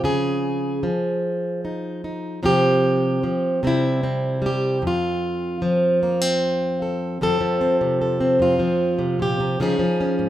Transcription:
steel-string acoustic guitar
Already playing: F3
0.04 C#3 G#4
0.83 F3
1.65 D#4
2.04 D#4
2.43 C3 F3 C4 G4
3.23 F3
3.63 C3 G3 C4
3.67 E4
4.03 C4
4.42 G3
4.46 G4
4.82 F2
4.87 F4
5.62 F3
6.03 A#3
6.21 C4
6.82 A4
7.21 F2 F3 C4 A4
7.41 F3
7.61 C4
7.81 C3
8.01 A4
8.21 C4
8.40 F2 F4
8.59 F3
8.99 C3
9.19 A#2 G4
9.40 C3
9.60 C#3 F3 C#4 D#4 G#4
9.79 F3
10.01 C#4
10.19 G#2

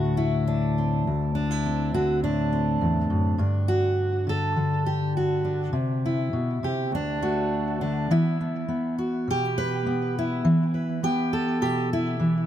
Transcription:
steel-string acoustic guitar
Already playing: D2 A2 D3 F#4
0.17 E4
0.47 D4
0.78 C4
1.07 D2
1.35 D4
1.51 E4
1.66 C4
1.94 D3 F#4
2.23 A2 D4
2.53 C4
2.81 E2
3.10 F#2
3.38 G2 D4
3.68 F#4
4.27 D3 A4
4.57 D3
4.86 G4
5.17 F#4
5.45 D4
5.73 C3
6.06 E4
6.33 B2
6.63 C3 G4
6.92 D2 D4
7.22 A3 F#4
7.81 D3 D4
8.11 E3 B3 E4
8.41 B3
8.68 B3
8.98 F#4
9.28 B2 G4
9.58 B4
9.86 B3
10.19 E4
10.45 E3
10.74 B4
11.03 B3 G4
11.33 A4
11.61 B2 G4
11.93 E4
12.20 E3

